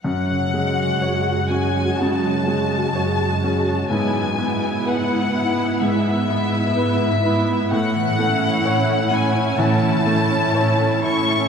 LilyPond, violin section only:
\new Staff \with { instrumentName = "Violin section" } { \time 4/4 \key fis \minor \tempo 4 = 63 fis''4. gis''8 a''2 | gis''4 fis''4 e''2 | fis''4. gis''8 a''4. cis'''8 | }